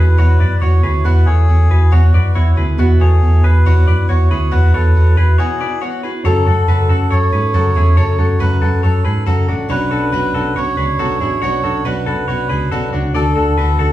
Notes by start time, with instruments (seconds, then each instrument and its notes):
Already playing: fingered electric bass E2, steel-string acoustic guitar E3 B3 E4 F#4, synth keys B3 E4 F#4, clean electric guitar G#4 B4, melodica B4
0.17 steel-string acoustic guitar E2 B2 E3 B3 E4 F#4, fingered electric bass E2, clean electric guitar F#4 C#5
0.39 fingered electric bass F#2, steel-string acoustic guitar E3 B3 E4 F#4, clean electric guitar B4 D5
0.56 melodica D5
0.60 fingered electric bass E2, steel-string acoustic guitar E3 B3 E4 F#4, clean electric guitar F#4 C#5, melodica C#5
0.83 fingered electric bass D2, steel-string acoustic guitar E3 B3 E4 F#4, clean electric guitar G#4 B4
1.04 steel-string acoustic guitar E2 B2 E3 B3 E4 F#4, fingered electric bass E2, clean electric guitar B3 F#4, melodica B4
1.25 fingered electric bass E2, steel-string acoustic guitar E3 B3 E4 F#4, clean electric guitar A3 C#5, melodica G#4
1.48 fingered electric bass E2, steel-string acoustic guitar B3 E4 F#4
1.69 fingered electric bass E2, steel-string acoustic guitar E3 B3 E4 F#4, clean electric guitar G#4 B4
1.91 steel-string acoustic guitar E2 B2 E3 B3 E4 F#4, fingered electric bass E2, melodica F#4, clean electric guitar F#4 C#5
2.13 fingered electric bass F#2, steel-string acoustic guitar E3 B3 E4 F#4, clean electric guitar B4 D5
2.34 fingered electric bass E2, steel-string acoustic guitar E3 B3 E4 F#4, melodica E4, clean electric guitar F#4 C#5
2.56 fingered electric bass D2, steel-string acoustic guitar E3 B3 E4 F#4, clean electric guitar G#4 B4
2.77 steel-string acoustic guitar E2 B2 E3 B3 E4 F#4, fingered electric bass E2, synth keys B3 E4 F#4, clean electric guitar B3 F#4, melodica F#4
2.99 fingered electric bass E2, steel-string acoustic guitar E3 B3 E4 F#4, clean electric guitar A3 C#5, melodica G#4
3.22 fingered electric bass E2, steel-string acoustic guitar B3 E4 F#4
3.43 fingered electric bass E2, steel-string acoustic guitar E3 B3 E4 F#4, clean electric guitar G#4 B4, melodica B4
3.65 steel-string acoustic guitar E2 B2 E3 B3 E4 F#4, fingered electric bass E2, clean electric guitar F#4 C#5
3.86 fingered electric bass F#2, steel-string acoustic guitar E3 B3 E4 F#4, clean electric guitar B4 D5
4.08 fingered electric bass E2, steel-string acoustic guitar E3 B3 E4 F#4, clean electric guitar F#4 C#5, melodica C#5
4.30 fingered electric bass D2, steel-string acoustic guitar E3 B3 E4 F#4, clean electric guitar G#4 B4
4.51 steel-string acoustic guitar E2 B2 E3 B3 E4 F#4, fingered electric bass E2, clean electric guitar B3 F#4, melodica B4
4.72 fingered electric bass E2, steel-string acoustic guitar E3 B3 E4 F#4, clean electric guitar A4 C#5, melodica B4
4.95 fingered electric bass E2, steel-string acoustic guitar E3 B3 E4 F#4
5.16 fingered electric bass E2, steel-string acoustic guitar E3 B3 E4 F#4, clean electric guitar G#4 B4
5.38 steel-string acoustic guitar E2 B2 E3 B3 E4 F#4, clean electric guitar F#4 C#5, melodica G#4
5.60 steel-string acoustic guitar E3 B3 E4 F#4, clean electric guitar B4 D5
5.81 steel-string acoustic guitar E3 B3 E4 F#4, melodica F#4, clean electric guitar F#4 C#5
6.03 steel-string acoustic guitar E3 B3 E4 F#4, clean electric guitar G#4 B4
6.23 fingered electric bass F#2, steel-string acoustic guitar F#2 C#3 F#3 A3 C#4 A4, synth keys C#4 F#4 A4, melodica A4, clean electric guitar A4 C#5
6.45 fingered electric bass F#2, steel-string acoustic guitar F#3 A3 C#4 A4, clean electric guitar F#4 A4
6.67 steel-string acoustic guitar F#2 C#3 F#3 A3 C#4 A4, fingered electric bass F#2, clean electric guitar F#4 B4
6.89 fingered electric bass F#2, steel-string acoustic guitar F#3 A3 C#4 A4, clean electric guitar F#4 A4
7.11 fingered electric bass F#2, steel-string acoustic guitar F#3 A3 C#4 A4, clean electric guitar A4 C#5, melodica C#5
7.32 fingered electric bass G#2, steel-string acoustic guitar F#3 A3 C#4 A4, clean electric guitar G#4 B4
7.53 steel-string acoustic guitar F#2 C#3 F#3 A3 C#4 A4, fingered electric bass F#2, clean electric guitar F#4 A4
7.74 fingered electric bass E2, steel-string acoustic guitar A3 C#4 A4, clean electric guitar E4 G#4
7.97 steel-string acoustic guitar F#2 C#3 F#3 A3 C#4 A4, fingered electric bass F#2, clean electric guitar A4 C#5, melodica C#5
8.18 fingered electric bass F#2, steel-string acoustic guitar F#3 A3 C#4 A4, clean electric guitar F#4 A4
8.39 steel-string acoustic guitar F#2 C#3 F#3 A3 C#4 A4, fingered electric bass F#2, clean electric guitar F#4 B4, melodica B4
8.62 fingered electric bass F#2, steel-string acoustic guitar F#3 A3 C#4 A4, clean electric guitar F#4 A4
8.82 fingered electric bass F#2, steel-string acoustic guitar F#3 A3 C#4 A4, melodica A4, clean electric guitar A4 C#5
9.04 fingered electric bass G#2, steel-string acoustic guitar F#3 A3 C#4 A4, clean electric guitar G#4 B4
9.26 steel-string acoustic guitar F#2 C#3 F#3 A3 C#4 A4, fingered electric bass F#2, clean electric guitar F#4 A4
9.47 fingered electric bass A1, steel-string acoustic guitar F#3 A3 C#4 A4, clean electric guitar D4 F#4
9.68 fingered electric bass B1, steel-string acoustic guitar B2 F#3 B3 D4 F#4 C#5, synth keys C#4 D4 B4, clean electric guitar F#4 C#5, melodica B4
9.90 fingered electric bass B1, steel-string acoustic guitar B3 D4 F#4 C#5, clean electric guitar F#4 A4
10.12 fingered electric bass B1, steel-string acoustic guitar B2 F#3 B3 D4 F#4 C#5, clean electric guitar F#4 B4
10.34 fingered electric bass B1, steel-string acoustic guitar B3 D4 F#4 C#5, clean electric guitar F#4 A4
10.56 fingered electric bass B1, steel-string acoustic guitar B3 D4 F#4 C#5, clean electric guitar F#4 C#5, melodica C#5
10.77 fingered electric bass C#2, steel-string acoustic guitar B3 D4 F#4 C#5, clean electric guitar G#4 B4
10.98 fingered electric bass B1, steel-string acoustic guitar B2 F#3 B3 D4 F#4 C#5, clean electric guitar F#4 A4
11.20 fingered electric bass A1, steel-string acoustic guitar B3 D4 F#4 C#5, clean electric guitar E4 G#4
11.42 fingered electric bass B1, steel-string acoustic guitar B2 F#3 B3 D4 F#4 C#5, clean electric guitar F#4 C#5, melodica C#5
11.64 fingered electric bass B1, steel-string acoustic guitar B3 D4 F#4 C#5, clean electric guitar F#4 A4
11.85 fingered electric bass B1, steel-string acoustic guitar B2 F#3 B3 D4 F#4 C#5, clean electric guitar F#4 B4, melodica B4
12.06 fingered electric bass B1, steel-string acoustic guitar B3 D4 F#4 C#5, clean electric guitar F#4 A4, melodica B4
12.28 fingered electric bass B1, steel-string acoustic guitar B3 D4 F#4 C#5, clean electric guitar F#4 C#5
12.49 fingered electric bass C#2, steel-string acoustic guitar B3 D4 F#4 C#5, clean electric guitar G#4 B4
12.72 fingered electric bass B1, steel-string acoustic guitar B2 F#3 B3 D4 F#4 C#5, clean electric guitar F#4 A4
12.93 fingered electric bass C#2, steel-string acoustic guitar B3 D4 F#4 C#5, clean electric guitar D4 F#4
13.13 fingered electric bass D2, steel-string acoustic guitar D3 D4 F#4 A4, synth keys D4 F#4 A4, clean electric guitar A4 D5, melodica A4
13.36 fingered electric bass D2, steel-string acoustic guitar D4 F#4 A4, clean electric guitar F#4 A4
13.58 fingered electric bass D2, steel-string acoustic guitar D3 D4 F#4 A4, clean electric guitar F#4 B4
13.79 fingered electric bass D2, steel-string acoustic guitar D4 F#4 A4, clean electric guitar F#4 A4